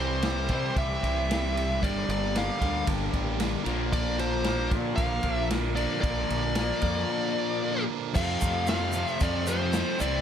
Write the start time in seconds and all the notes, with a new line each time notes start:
Already playing: C2 C3 E3 G3 C4 E4 G4 E5
0.00 G3 C5
0.21 E3 G3 E4 G4, snare, ride
0.48 C3 E3 G3 C4 E4 G4, kick, ride
0.76 C2 E3 G3 E4 G4 E5, kick, ride
1.03 C2 G3 E4 G4, kick, ride
1.29 C3 E3 G3 E4 G4, snare, ride
1.54 E4 G4, ride
1.58 G3
1.80 G1 G2 D3 G3 A#3 D4 G4 D5, kick
1.84 ride
2.07 G1 G3 A#3 D4 G4 D5, ride
2.34 G3 A#3 D4 G4 F5, snare, ride
2.60 D2 G2 D3 G3 A#3 D4 G4, kick, ride
2.85 G1 G3 A#3 D4, kick, ride
2.90 G4
3.11 A1 A#3 D4 G4, kick, ride
3.16 G3
3.37 G2 D3 G3 A#3 D4, snare, ride
3.41 G4
3.63 A#1 A#2 D3 F3 A#3 D4 F4 A#4 D5, ride
3.91 A#2 D3 F3 A#3 D4 A#4 D5, kick, ride
4.18 F3 A#3 D4 A#4 C5, ride
4.43 A#2 F3 A#3, snare, ride
4.47 D4 A#4
4.71 A#2 D3 F3 A#3 D4 A#4, kick, ride
4.96 A#1 F3 A#3 D4 A#4 F5, kick, ride
5.23 A#1 A#3 D4 A#4, kick, ride
5.27 F3
5.33 E5
5.50 A#2 D3 F3 A#3 D4 A#4, snare, ride
5.75 A#2 A#3 D4 A#4 D5, ride
5.79 F3
6.01 A#1 A#2 D3 F3 A#3 D4 D5, kick, ride
6.05 A#4
6.28 A#1 F3 A#3 D4 A#4, ride
6.54 A#2 F3 A#3 D4 A#4, snare, ride
6.81 F2 A#2 D3 F3 A#3 D4 A#4, kick, ride
7.09 F3 A#3 D4 A#4
7.36 F3 A#3 D4 A#4
7.62 A#2 D3 F3 A#3 D4 A#4
7.89 A#3 D4 A#4
7.93 F3
8.15 F2 C3 F3 A3 C4 F4 G4 C5 F5, kick, crash, shaker
8.41 F2 C3 F3 A3 C4 F4, kick, crash, shaker
8.67 F2 C3 F3 A3 C4 F5, snare, crash, shaker
8.71 F4
8.92 F2, crash, shaker
8.97 C3 F3 A3 C4 F4
9.07 E5, shaker
9.20 F2 C3 F3 A3 C4 F4 D5, kick, crash, shaker
9.47 F2 C3 F3 A3 C4 C5, crash, shaker
9.51 F4
9.73 F2 C3 F3 A3, snare, crash, shaker
9.77 C4 F4
9.97 C2 C3 G3 C4 E4 C5, crash, shaker
10.01 E3 G3 C4 E4 D5